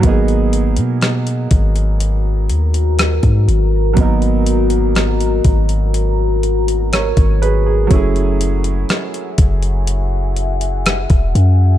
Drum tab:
HH |xxxxxxxxx-xxxxx-|xxxxxxxxx-xxxxx-|xxxxxxxxx-xxxxx-|
SD |----r-------r---|----r-------r---|----r-------r---|
BD |o-----o------o--|o-----o------o--|o-----o------o--|